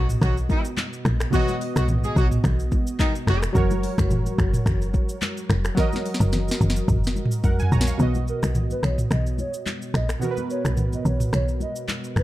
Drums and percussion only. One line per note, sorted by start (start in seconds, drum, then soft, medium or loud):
0.09 mid tom loud
0.09 shaker loud
0.22 finger snap medium
0.22 kick loud
0.22 cross-stick loud
0.22 low conga medium
0.22 shaker medium
0.37 shaker soft
0.49 kick loud
0.49 high conga medium
0.49 shaker soft
0.65 shaker medium
0.77 clap loud
0.77 high conga medium
0.77 shaker medium
0.93 shaker medium
1.05 finger snap medium
1.05 cross-stick loud
1.05 high conga medium
1.05 shaker medium
1.20 finger snap medium
1.20 cross-stick loud
1.20 shaker loud
1.33 kick loud
1.33 low conga medium
1.33 shaker medium
1.48 high conga medium
1.48 shaker medium
1.61 open hi-hat medium
1.61 shaker medium
1.76 finger snap medium
1.76 cross-stick medium
1.76 high conga medium
1.76 shaker medium
1.88 mid tom loud
1.88 low conga medium
1.88 shaker medium
2.04 high conga medium
2.04 shaker medium
2.16 kick loud
2.16 shaker medium
2.31 mid tom loud
2.31 shaker loud
2.44 finger snap medium
2.44 kick loud
2.44 cross-stick loud
2.44 low conga medium
2.44 shaker medium
2.59 shaker medium
2.72 kick loud
2.72 high conga medium
2.72 shaker medium
2.87 shaker loud
2.99 kick loud
2.99 clap loud
2.99 high conga medium
2.99 shaker medium
3.15 shaker medium
3.27 finger snap medium
3.27 cross-stick loud
3.27 high conga medium
3.27 shaker medium
3.43 finger snap medium
3.43 cross-stick loud
3.43 shaker medium
3.55 kick loud
3.55 low conga medium
3.55 shaker medium
3.70 high conga medium
3.70 shaker medium
3.83 open hi-hat medium
3.83 shaker medium
3.98 finger snap medium
3.98 kick medium
3.98 cross-stick medium
3.98 high conga medium
3.98 shaker loud
4.10 mid tom medium
4.10 low conga medium
4.10 shaker medium
4.26 high conga medium
4.26 shaker medium
4.38 finger snap medium
4.38 kick loud
4.38 cross-stick medium
4.38 shaker medium
4.53 mid tom loud
4.53 shaker loud
4.66 finger snap medium
4.66 kick loud
4.66 cross-stick loud
4.66 low conga medium
4.66 shaker medium
4.82 shaker soft
4.94 kick loud
4.94 high conga medium
4.94 shaker medium
5.09 shaker loud
5.22 clap loud
5.22 high conga medium
5.22 shaker medium
5.37 shaker medium
5.50 finger snap medium
5.50 cross-stick medium
5.50 high conga medium
5.50 shaker medium
5.65 finger snap medium
5.65 cross-stick medium
5.65 shaker loud
5.77 kick loud
5.77 snare medium
5.77 low conga medium
5.77 shaker medium
5.93 snare medium
5.93 high conga medium
5.93 shaker medium
6.06 open hi-hat medium
6.06 shaker soft
6.14 snare medium
6.21 high conga medium
6.21 shaker medium
6.33 snare medium
6.33 low conga medium
6.33 shaker medium
6.48 snare medium
6.48 high conga medium
6.48 shaker medium
6.61 low conga medium
6.61 shaker medium
6.70 snare medium
6.76 shaker loud
6.88 kick loud
6.88 mid tom loud
6.88 low conga medium
6.88 shaker medium
7.04 snare medium
7.04 shaker soft
7.16 high conga medium
7.16 shaker medium
7.25 mid tom loud
7.31 shaker loud
7.44 kick loud
7.44 floor tom medium
7.44 high conga medium
7.44 shaker medium
7.59 floor tom loud
7.59 shaker medium
7.72 high conga medium
7.72 shaker medium
7.81 snare loud
7.87 shaker loud
7.99 low conga medium
7.99 shaker medium
8.15 high conga medium
8.15 shaker medium
8.28 shaker medium
8.43 finger snap medium
8.43 cross-stick medium
8.43 high conga medium
8.43 shaker medium
8.55 mid tom medium
8.55 low conga medium
8.55 shaker medium
8.70 high conga soft
8.70 shaker medium
8.83 finger snap medium
8.83 cross-stick medium
8.83 low conga medium
8.83 shaker medium
8.98 mid tom loud
8.98 shaker loud
9.11 finger snap medium
9.11 cross-stick medium
9.11 low conga medium
9.11 shaker medium
9.26 shaker soft
9.38 high conga medium
9.38 shaker medium
9.54 shaker medium
9.66 clap loud
9.66 high conga medium
9.66 shaker medium
9.82 shaker medium
9.94 finger snap medium
9.94 cross-stick medium
9.94 high conga medium
9.94 shaker medium
10.09 finger snap medium
10.09 cross-stick medium
10.09 shaker medium
10.22 low conga medium
10.22 shaker medium
10.37 high conga medium
10.37 shaker medium
10.50 shaker soft
10.65 finger snap medium
10.65 cross-stick medium
10.65 high conga medium
10.65 shaker medium
10.77 mid tom medium
10.77 low conga medium
10.77 shaker medium
10.93 high conga medium
10.93 shaker medium
11.05 low conga medium
11.05 shaker medium
11.20 mid tom loud
11.20 shaker medium
11.33 finger snap medium
11.33 cross-stick medium
11.33 low conga medium
11.33 shaker medium
11.48 shaker soft
11.60 high conga medium
11.60 shaker medium
11.76 shaker medium
11.88 clap loud
11.88 high conga medium
11.88 shaker medium
12.04 shaker medium
12.16 finger snap medium
12.16 cross-stick medium
12.16 high conga medium
12.16 shaker medium